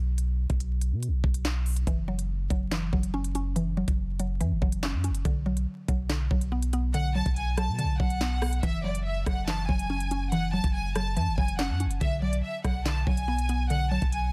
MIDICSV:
0, 0, Header, 1, 5, 480
1, 0, Start_track
1, 0, Key_signature, 3, "minor"
1, 0, Tempo, 422535
1, 206, Time_signature, 4, 2, 24, 8
1, 16273, End_track
2, 0, Start_track
2, 0, Title_t, "Violin section"
2, 0, Program_c, 0, 48
2, 7882, Note_on_c, 0, 78, 108
2, 8082, Note_off_c, 0, 78, 0
2, 8124, Note_on_c, 0, 81, 86
2, 8323, Note_off_c, 0, 81, 0
2, 8367, Note_on_c, 0, 80, 79
2, 8565, Note_off_c, 0, 80, 0
2, 8606, Note_on_c, 0, 81, 87
2, 8804, Note_off_c, 0, 81, 0
2, 8846, Note_on_c, 0, 81, 81
2, 9044, Note_off_c, 0, 81, 0
2, 9082, Note_on_c, 0, 78, 85
2, 9761, Note_off_c, 0, 78, 0
2, 9807, Note_on_c, 0, 76, 101
2, 10005, Note_off_c, 0, 76, 0
2, 10050, Note_on_c, 0, 74, 74
2, 10247, Note_off_c, 0, 74, 0
2, 10281, Note_on_c, 0, 76, 82
2, 10482, Note_off_c, 0, 76, 0
2, 10530, Note_on_c, 0, 78, 83
2, 10727, Note_off_c, 0, 78, 0
2, 10764, Note_on_c, 0, 81, 93
2, 10963, Note_off_c, 0, 81, 0
2, 11003, Note_on_c, 0, 80, 81
2, 11681, Note_off_c, 0, 80, 0
2, 11717, Note_on_c, 0, 78, 98
2, 11919, Note_off_c, 0, 78, 0
2, 11963, Note_on_c, 0, 81, 84
2, 12163, Note_off_c, 0, 81, 0
2, 12206, Note_on_c, 0, 80, 87
2, 12404, Note_off_c, 0, 80, 0
2, 12440, Note_on_c, 0, 81, 88
2, 12641, Note_off_c, 0, 81, 0
2, 12682, Note_on_c, 0, 81, 90
2, 12882, Note_off_c, 0, 81, 0
2, 12924, Note_on_c, 0, 80, 85
2, 13123, Note_off_c, 0, 80, 0
2, 13165, Note_on_c, 0, 78, 83
2, 13363, Note_off_c, 0, 78, 0
2, 13648, Note_on_c, 0, 76, 111
2, 13845, Note_off_c, 0, 76, 0
2, 13890, Note_on_c, 0, 74, 87
2, 14087, Note_off_c, 0, 74, 0
2, 14132, Note_on_c, 0, 76, 83
2, 14328, Note_off_c, 0, 76, 0
2, 14367, Note_on_c, 0, 78, 75
2, 14565, Note_off_c, 0, 78, 0
2, 14610, Note_on_c, 0, 81, 91
2, 14806, Note_off_c, 0, 81, 0
2, 14847, Note_on_c, 0, 80, 90
2, 15523, Note_off_c, 0, 80, 0
2, 15563, Note_on_c, 0, 78, 108
2, 15762, Note_off_c, 0, 78, 0
2, 15805, Note_on_c, 0, 81, 86
2, 16004, Note_off_c, 0, 81, 0
2, 16047, Note_on_c, 0, 80, 79
2, 16245, Note_off_c, 0, 80, 0
2, 16273, End_track
3, 0, Start_track
3, 0, Title_t, "Synth pluck"
3, 0, Program_c, 1, 84
3, 2125, Note_on_c, 1, 52, 95
3, 2363, Note_on_c, 1, 54, 82
3, 2831, Note_off_c, 1, 54, 0
3, 2845, Note_on_c, 1, 54, 82
3, 3068, Note_off_c, 1, 52, 0
3, 3082, Note_on_c, 1, 52, 89
3, 3311, Note_off_c, 1, 54, 0
3, 3325, Note_on_c, 1, 54, 86
3, 3564, Note_on_c, 1, 61, 98
3, 3793, Note_off_c, 1, 61, 0
3, 3806, Note_on_c, 1, 61, 90
3, 4028, Note_off_c, 1, 52, 0
3, 4042, Note_on_c, 1, 52, 101
3, 4271, Note_off_c, 1, 54, 0
3, 4284, Note_on_c, 1, 54, 83
3, 4753, Note_off_c, 1, 54, 0
3, 4766, Note_on_c, 1, 54, 80
3, 4991, Note_off_c, 1, 52, 0
3, 5004, Note_on_c, 1, 52, 95
3, 5006, Note_off_c, 1, 61, 0
3, 5231, Note_off_c, 1, 54, 0
3, 5245, Note_on_c, 1, 54, 84
3, 5486, Note_on_c, 1, 61, 88
3, 5713, Note_off_c, 1, 61, 0
3, 5727, Note_on_c, 1, 61, 80
3, 5965, Note_off_c, 1, 52, 0
3, 5965, Note_off_c, 1, 54, 0
3, 5966, Note_off_c, 1, 61, 0
3, 5967, Note_on_c, 1, 50, 104
3, 6202, Note_on_c, 1, 54, 83
3, 6671, Note_off_c, 1, 54, 0
3, 6685, Note_on_c, 1, 54, 80
3, 6909, Note_off_c, 1, 50, 0
3, 6923, Note_on_c, 1, 50, 88
3, 7152, Note_off_c, 1, 54, 0
3, 7165, Note_on_c, 1, 54, 84
3, 7405, Note_on_c, 1, 59, 88
3, 7634, Note_off_c, 1, 59, 0
3, 7648, Note_on_c, 1, 59, 91
3, 7873, Note_off_c, 1, 50, 0
3, 7886, Note_on_c, 1, 50, 102
3, 8112, Note_off_c, 1, 54, 0
3, 8125, Note_on_c, 1, 54, 84
3, 8591, Note_off_c, 1, 54, 0
3, 8605, Note_on_c, 1, 54, 88
3, 8830, Note_off_c, 1, 50, 0
3, 8844, Note_on_c, 1, 50, 91
3, 8846, Note_off_c, 1, 59, 0
3, 9071, Note_off_c, 1, 54, 0
3, 9085, Note_on_c, 1, 54, 89
3, 9324, Note_on_c, 1, 59, 85
3, 9548, Note_off_c, 1, 59, 0
3, 9561, Note_on_c, 1, 59, 84
3, 9803, Note_off_c, 1, 59, 0
3, 9804, Note_off_c, 1, 50, 0
3, 9805, Note_off_c, 1, 54, 0
3, 9805, Note_on_c, 1, 52, 95
3, 10043, Note_on_c, 1, 54, 84
3, 10511, Note_off_c, 1, 54, 0
3, 10525, Note_on_c, 1, 54, 84
3, 10748, Note_off_c, 1, 52, 0
3, 10761, Note_on_c, 1, 52, 88
3, 10992, Note_off_c, 1, 54, 0
3, 11005, Note_on_c, 1, 54, 83
3, 11244, Note_on_c, 1, 61, 96
3, 11473, Note_off_c, 1, 61, 0
3, 11487, Note_on_c, 1, 61, 92
3, 11709, Note_off_c, 1, 52, 0
3, 11723, Note_on_c, 1, 52, 104
3, 11952, Note_off_c, 1, 54, 0
3, 11965, Note_on_c, 1, 54, 82
3, 12433, Note_off_c, 1, 54, 0
3, 12447, Note_on_c, 1, 54, 81
3, 12671, Note_off_c, 1, 52, 0
3, 12684, Note_on_c, 1, 52, 99
3, 12686, Note_off_c, 1, 61, 0
3, 12911, Note_off_c, 1, 54, 0
3, 12925, Note_on_c, 1, 54, 85
3, 13166, Note_on_c, 1, 61, 88
3, 13393, Note_off_c, 1, 61, 0
3, 13407, Note_on_c, 1, 61, 76
3, 13645, Note_off_c, 1, 52, 0
3, 13645, Note_off_c, 1, 54, 0
3, 13646, Note_off_c, 1, 61, 0
3, 13647, Note_on_c, 1, 50, 104
3, 13882, Note_on_c, 1, 54, 81
3, 14351, Note_off_c, 1, 54, 0
3, 14365, Note_on_c, 1, 54, 81
3, 14590, Note_off_c, 1, 50, 0
3, 14603, Note_on_c, 1, 50, 90
3, 14832, Note_off_c, 1, 54, 0
3, 14846, Note_on_c, 1, 54, 85
3, 15086, Note_on_c, 1, 59, 92
3, 15314, Note_off_c, 1, 59, 0
3, 15327, Note_on_c, 1, 59, 94
3, 15553, Note_off_c, 1, 50, 0
3, 15566, Note_on_c, 1, 50, 100
3, 15791, Note_off_c, 1, 54, 0
3, 15805, Note_on_c, 1, 54, 81
3, 16271, Note_off_c, 1, 54, 0
3, 16273, Note_off_c, 1, 50, 0
3, 16273, Note_off_c, 1, 59, 0
3, 16273, End_track
4, 0, Start_track
4, 0, Title_t, "808-style bass"
4, 0, Program_c, 2, 38
4, 0, Note_on_c, 2, 35, 106
4, 523, Note_off_c, 2, 35, 0
4, 567, Note_on_c, 2, 35, 111
4, 1045, Note_on_c, 2, 47, 96
4, 1062, Note_off_c, 2, 35, 0
4, 1225, Note_on_c, 2, 35, 99
4, 1242, Note_off_c, 2, 47, 0
4, 1396, Note_off_c, 2, 35, 0
4, 1406, Note_on_c, 2, 35, 105
4, 2097, Note_off_c, 2, 35, 0
4, 2126, Note_on_c, 2, 30, 117
4, 2817, Note_off_c, 2, 30, 0
4, 2845, Note_on_c, 2, 30, 107
4, 3306, Note_off_c, 2, 30, 0
4, 3326, Note_on_c, 2, 30, 108
4, 4362, Note_off_c, 2, 30, 0
4, 4407, Note_on_c, 2, 30, 108
4, 5005, Note_on_c, 2, 42, 98
4, 5022, Note_off_c, 2, 30, 0
4, 5125, Note_on_c, 2, 30, 99
4, 5142, Note_off_c, 2, 42, 0
4, 5239, Note_off_c, 2, 30, 0
4, 5247, Note_on_c, 2, 30, 109
4, 5605, Note_on_c, 2, 42, 100
4, 5622, Note_off_c, 2, 30, 0
4, 5785, Note_on_c, 2, 30, 101
4, 5802, Note_off_c, 2, 42, 0
4, 5956, Note_off_c, 2, 30, 0
4, 5966, Note_on_c, 2, 35, 113
4, 6426, Note_off_c, 2, 35, 0
4, 6685, Note_on_c, 2, 35, 105
4, 7146, Note_off_c, 2, 35, 0
4, 7166, Note_on_c, 2, 35, 105
4, 8203, Note_off_c, 2, 35, 0
4, 8246, Note_on_c, 2, 35, 106
4, 8726, Note_on_c, 2, 47, 99
4, 8743, Note_off_c, 2, 35, 0
4, 8905, Note_on_c, 2, 35, 98
4, 8922, Note_off_c, 2, 47, 0
4, 9076, Note_off_c, 2, 35, 0
4, 9086, Note_on_c, 2, 35, 108
4, 9777, Note_off_c, 2, 35, 0
4, 9805, Note_on_c, 2, 30, 111
4, 10496, Note_off_c, 2, 30, 0
4, 10525, Note_on_c, 2, 30, 106
4, 10986, Note_off_c, 2, 30, 0
4, 11006, Note_on_c, 2, 30, 106
4, 12042, Note_off_c, 2, 30, 0
4, 12086, Note_on_c, 2, 30, 110
4, 12685, Note_on_c, 2, 42, 101
4, 12702, Note_off_c, 2, 30, 0
4, 12805, Note_on_c, 2, 30, 94
4, 12822, Note_off_c, 2, 42, 0
4, 12919, Note_off_c, 2, 30, 0
4, 12926, Note_on_c, 2, 30, 111
4, 13285, Note_on_c, 2, 42, 103
4, 13302, Note_off_c, 2, 30, 0
4, 13465, Note_on_c, 2, 30, 102
4, 13482, Note_off_c, 2, 42, 0
4, 13636, Note_off_c, 2, 30, 0
4, 13645, Note_on_c, 2, 35, 120
4, 14106, Note_off_c, 2, 35, 0
4, 14364, Note_on_c, 2, 35, 104
4, 14826, Note_off_c, 2, 35, 0
4, 14846, Note_on_c, 2, 35, 105
4, 15883, Note_off_c, 2, 35, 0
4, 15927, Note_on_c, 2, 35, 105
4, 16273, Note_off_c, 2, 35, 0
4, 16273, End_track
5, 0, Start_track
5, 0, Title_t, "Drums"
5, 205, Note_on_c, 9, 42, 80
5, 319, Note_off_c, 9, 42, 0
5, 565, Note_on_c, 9, 42, 43
5, 567, Note_on_c, 9, 36, 90
5, 679, Note_off_c, 9, 42, 0
5, 680, Note_off_c, 9, 36, 0
5, 685, Note_on_c, 9, 42, 73
5, 799, Note_off_c, 9, 42, 0
5, 925, Note_on_c, 9, 42, 78
5, 1039, Note_off_c, 9, 42, 0
5, 1165, Note_on_c, 9, 42, 77
5, 1279, Note_off_c, 9, 42, 0
5, 1406, Note_on_c, 9, 36, 91
5, 1520, Note_off_c, 9, 36, 0
5, 1525, Note_on_c, 9, 42, 76
5, 1639, Note_off_c, 9, 42, 0
5, 1645, Note_on_c, 9, 38, 121
5, 1645, Note_on_c, 9, 42, 72
5, 1657, Note_on_c, 9, 39, 102
5, 1759, Note_off_c, 9, 38, 0
5, 1759, Note_off_c, 9, 42, 0
5, 1770, Note_off_c, 9, 39, 0
5, 1885, Note_on_c, 9, 46, 57
5, 1999, Note_off_c, 9, 46, 0
5, 2005, Note_on_c, 9, 42, 83
5, 2119, Note_off_c, 9, 42, 0
5, 2125, Note_on_c, 9, 36, 113
5, 2125, Note_on_c, 9, 42, 85
5, 2239, Note_off_c, 9, 36, 0
5, 2239, Note_off_c, 9, 42, 0
5, 2485, Note_on_c, 9, 42, 67
5, 2599, Note_off_c, 9, 42, 0
5, 2845, Note_on_c, 9, 36, 94
5, 2845, Note_on_c, 9, 42, 79
5, 2958, Note_off_c, 9, 36, 0
5, 2959, Note_off_c, 9, 42, 0
5, 3085, Note_on_c, 9, 38, 109
5, 3085, Note_on_c, 9, 42, 81
5, 3096, Note_on_c, 9, 39, 88
5, 3198, Note_off_c, 9, 38, 0
5, 3199, Note_off_c, 9, 42, 0
5, 3210, Note_off_c, 9, 39, 0
5, 3326, Note_on_c, 9, 36, 95
5, 3440, Note_off_c, 9, 36, 0
5, 3445, Note_on_c, 9, 42, 73
5, 3559, Note_off_c, 9, 42, 0
5, 3685, Note_on_c, 9, 42, 79
5, 3799, Note_off_c, 9, 42, 0
5, 3805, Note_on_c, 9, 42, 81
5, 3919, Note_off_c, 9, 42, 0
5, 4045, Note_on_c, 9, 42, 83
5, 4159, Note_off_c, 9, 42, 0
5, 4406, Note_on_c, 9, 36, 91
5, 4406, Note_on_c, 9, 42, 70
5, 4519, Note_off_c, 9, 42, 0
5, 4520, Note_off_c, 9, 36, 0
5, 4766, Note_on_c, 9, 42, 78
5, 4879, Note_off_c, 9, 42, 0
5, 5006, Note_on_c, 9, 42, 80
5, 5119, Note_off_c, 9, 42, 0
5, 5246, Note_on_c, 9, 36, 91
5, 5360, Note_off_c, 9, 36, 0
5, 5365, Note_on_c, 9, 42, 74
5, 5479, Note_off_c, 9, 42, 0
5, 5485, Note_on_c, 9, 38, 123
5, 5485, Note_on_c, 9, 42, 71
5, 5497, Note_on_c, 9, 39, 97
5, 5599, Note_off_c, 9, 38, 0
5, 5599, Note_off_c, 9, 42, 0
5, 5610, Note_off_c, 9, 39, 0
5, 5725, Note_on_c, 9, 42, 82
5, 5839, Note_off_c, 9, 42, 0
5, 5845, Note_on_c, 9, 42, 82
5, 5959, Note_off_c, 9, 42, 0
5, 5966, Note_on_c, 9, 36, 115
5, 5966, Note_on_c, 9, 42, 79
5, 6079, Note_off_c, 9, 36, 0
5, 6079, Note_off_c, 9, 42, 0
5, 6325, Note_on_c, 9, 42, 69
5, 6439, Note_off_c, 9, 42, 0
5, 6685, Note_on_c, 9, 36, 93
5, 6685, Note_on_c, 9, 42, 77
5, 6798, Note_off_c, 9, 36, 0
5, 6799, Note_off_c, 9, 42, 0
5, 6925, Note_on_c, 9, 38, 113
5, 6925, Note_on_c, 9, 42, 78
5, 6936, Note_on_c, 9, 39, 86
5, 7038, Note_off_c, 9, 38, 0
5, 7039, Note_off_c, 9, 42, 0
5, 7050, Note_off_c, 9, 39, 0
5, 7166, Note_on_c, 9, 36, 89
5, 7280, Note_off_c, 9, 36, 0
5, 7285, Note_on_c, 9, 42, 76
5, 7399, Note_off_c, 9, 42, 0
5, 7525, Note_on_c, 9, 42, 83
5, 7639, Note_off_c, 9, 42, 0
5, 7645, Note_on_c, 9, 42, 84
5, 7759, Note_off_c, 9, 42, 0
5, 7885, Note_on_c, 9, 42, 81
5, 7999, Note_off_c, 9, 42, 0
5, 8245, Note_on_c, 9, 42, 43
5, 8246, Note_on_c, 9, 36, 92
5, 8359, Note_off_c, 9, 42, 0
5, 8360, Note_off_c, 9, 36, 0
5, 8365, Note_on_c, 9, 42, 73
5, 8479, Note_off_c, 9, 42, 0
5, 8606, Note_on_c, 9, 37, 94
5, 8606, Note_on_c, 9, 42, 76
5, 8719, Note_off_c, 9, 42, 0
5, 8720, Note_off_c, 9, 37, 0
5, 8846, Note_on_c, 9, 42, 75
5, 8959, Note_off_c, 9, 42, 0
5, 9086, Note_on_c, 9, 36, 90
5, 9200, Note_off_c, 9, 36, 0
5, 9205, Note_on_c, 9, 42, 71
5, 9318, Note_off_c, 9, 42, 0
5, 9325, Note_on_c, 9, 38, 120
5, 9325, Note_on_c, 9, 42, 69
5, 9336, Note_on_c, 9, 39, 97
5, 9438, Note_off_c, 9, 42, 0
5, 9439, Note_off_c, 9, 38, 0
5, 9450, Note_off_c, 9, 39, 0
5, 9565, Note_on_c, 9, 37, 101
5, 9565, Note_on_c, 9, 46, 60
5, 9678, Note_off_c, 9, 46, 0
5, 9679, Note_off_c, 9, 37, 0
5, 9685, Note_on_c, 9, 42, 82
5, 9799, Note_off_c, 9, 42, 0
5, 9805, Note_on_c, 9, 36, 113
5, 9805, Note_on_c, 9, 42, 81
5, 9918, Note_off_c, 9, 42, 0
5, 9919, Note_off_c, 9, 36, 0
5, 10165, Note_on_c, 9, 42, 67
5, 10279, Note_off_c, 9, 42, 0
5, 10525, Note_on_c, 9, 36, 95
5, 10525, Note_on_c, 9, 42, 79
5, 10526, Note_on_c, 9, 37, 98
5, 10638, Note_off_c, 9, 36, 0
5, 10639, Note_off_c, 9, 42, 0
5, 10640, Note_off_c, 9, 37, 0
5, 10765, Note_on_c, 9, 38, 108
5, 10765, Note_on_c, 9, 42, 77
5, 10776, Note_on_c, 9, 39, 87
5, 10878, Note_off_c, 9, 38, 0
5, 10879, Note_off_c, 9, 42, 0
5, 10890, Note_off_c, 9, 39, 0
5, 11006, Note_on_c, 9, 36, 90
5, 11120, Note_off_c, 9, 36, 0
5, 11125, Note_on_c, 9, 42, 73
5, 11238, Note_off_c, 9, 42, 0
5, 11365, Note_on_c, 9, 42, 83
5, 11478, Note_off_c, 9, 42, 0
5, 11485, Note_on_c, 9, 42, 81
5, 11598, Note_off_c, 9, 42, 0
5, 11724, Note_on_c, 9, 42, 82
5, 11838, Note_off_c, 9, 42, 0
5, 12085, Note_on_c, 9, 42, 68
5, 12086, Note_on_c, 9, 36, 92
5, 12199, Note_off_c, 9, 42, 0
5, 12200, Note_off_c, 9, 36, 0
5, 12445, Note_on_c, 9, 42, 77
5, 12446, Note_on_c, 9, 37, 99
5, 12559, Note_off_c, 9, 37, 0
5, 12559, Note_off_c, 9, 42, 0
5, 12685, Note_on_c, 9, 42, 80
5, 12799, Note_off_c, 9, 42, 0
5, 12926, Note_on_c, 9, 36, 94
5, 13040, Note_off_c, 9, 36, 0
5, 13045, Note_on_c, 9, 42, 73
5, 13158, Note_off_c, 9, 42, 0
5, 13165, Note_on_c, 9, 38, 124
5, 13165, Note_on_c, 9, 42, 72
5, 13176, Note_on_c, 9, 39, 98
5, 13278, Note_off_c, 9, 42, 0
5, 13279, Note_off_c, 9, 38, 0
5, 13290, Note_off_c, 9, 39, 0
5, 13405, Note_on_c, 9, 42, 79
5, 13518, Note_off_c, 9, 42, 0
5, 13525, Note_on_c, 9, 42, 82
5, 13638, Note_off_c, 9, 42, 0
5, 13645, Note_on_c, 9, 36, 112
5, 13645, Note_on_c, 9, 42, 82
5, 13758, Note_off_c, 9, 42, 0
5, 13759, Note_off_c, 9, 36, 0
5, 14005, Note_on_c, 9, 42, 68
5, 14119, Note_off_c, 9, 42, 0
5, 14365, Note_on_c, 9, 36, 97
5, 14365, Note_on_c, 9, 42, 78
5, 14366, Note_on_c, 9, 37, 96
5, 14478, Note_off_c, 9, 36, 0
5, 14479, Note_off_c, 9, 42, 0
5, 14480, Note_off_c, 9, 37, 0
5, 14605, Note_on_c, 9, 38, 111
5, 14605, Note_on_c, 9, 42, 78
5, 14616, Note_on_c, 9, 39, 88
5, 14718, Note_off_c, 9, 38, 0
5, 14719, Note_off_c, 9, 42, 0
5, 14730, Note_off_c, 9, 39, 0
5, 14846, Note_on_c, 9, 36, 91
5, 14960, Note_off_c, 9, 36, 0
5, 14965, Note_on_c, 9, 42, 73
5, 15079, Note_off_c, 9, 42, 0
5, 15205, Note_on_c, 9, 42, 81
5, 15319, Note_off_c, 9, 42, 0
5, 15325, Note_on_c, 9, 42, 82
5, 15439, Note_off_c, 9, 42, 0
5, 15565, Note_on_c, 9, 42, 85
5, 15679, Note_off_c, 9, 42, 0
5, 15925, Note_on_c, 9, 42, 41
5, 15926, Note_on_c, 9, 36, 89
5, 16039, Note_off_c, 9, 42, 0
5, 16040, Note_off_c, 9, 36, 0
5, 16045, Note_on_c, 9, 42, 72
5, 16159, Note_off_c, 9, 42, 0
5, 16273, End_track
0, 0, End_of_file